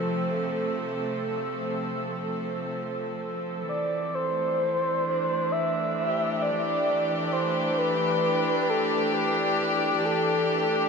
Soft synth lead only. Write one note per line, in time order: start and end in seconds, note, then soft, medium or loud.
3.69 4.16 D5 medium
4.15 5.53 C5 loud
5.52 6.42 E5 loud
6.42 7.34 D5 loud
7.33 7.79 C5 medium
7.78 8.71 B4 loud
8.70 9.13 A4 medium
9.14 10.07 G4 loud
10.05 10.73 A4 loud